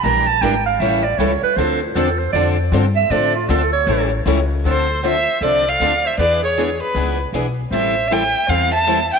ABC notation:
X:1
M:4/4
L:1/16
Q:"Swing" 1/4=156
K:Dm
V:1 name="Violin"
z16 | z16 | z16 | c4 e4 d2 f4 e2 |
d2 ^c4 =B4 z6 | e4 g4 f2 a4 g2 |]
V:2 name="Clarinet"
b2 a2 g2 f2 e2 d2 ^c2 =B2 | c2 E2 A2 c2 d2 z4 e2 | d2 F2 A2 ^c4 z6 | A4 c4 A2 d4 c2 |
=B2 ^G4 G4 z6 | c4 e4 c2 e4 e2 |]
V:3 name="Steel-string acoustic guitar"
[E,B,DG]2 z2 [E,B,DG] z3 [E,G,^CEA]2 z2 [E,G,CEA] z3 | [D,F,CDA]2 z2 [D,F,CDA] z3 [D,F,CDA]2 z2 [D,F,CDA] z3 | [D,F,CDA]2 z2 [D,F,CDA] z3 [E,G,^CEA]2 z2 [E,G,CEA] z3 | [D,F,CDA]2 z2 [D,F,CDA] z3 [D,F,CDA]2 z2 [D,F,CDA] z3 |
[E,=B,D^G]2 z2 [E,B,DG] z3 [E,B,DG]2 z2 [E,B,DG] z3 | [E,G,CEA]2 z2 [E,G,CEA] z3 [E,G,CEA]2 z2 [E,G,CEA] z3 |]
V:4 name="Steel-string acoustic guitar"
[E,G,DEB]2 z2 [E,G,DEB] z3 [E,G,^CEA]2 z2 [E,G,CEA] z3 | [D,F,CDA]2 z2 [D,F,CDA] z3 [D,F,CDA]2 z2 [D,F,CDA] z3 | [D,F,CDA]2 z2 [D,F,CDA] z3 [E,G,^CEA]2 z2 [E,G,CEA] z3 | [D,F,CDA]2 z2 [D,F,CDA] z3 [D,F,CDA]2 z2 [D,F,CDA] z3 |
[E,=B,D^G=B]2 z2 [E,B,DGB] z3 [E,B,DGB]2 z2 [E,B,DGB] z3 | [E,G,CEA]2 z2 [E,G,CEA] z3 [E,G,CEA]2 z2 [E,G,CEA] z3 |]
V:5 name="Upright bass" clef=bass
B,,,4 ^G,,,4 A,,,4 ^C,,2 z2 | D,,4 E,,4 F,,4 G,,4 | A,,4 D,,4 A,,,4 ^C,,4 | D,,8 C,,4 D,,4 |
E,,8 ^C,,4 =B,,,4 | A,,,8 E,,8 |]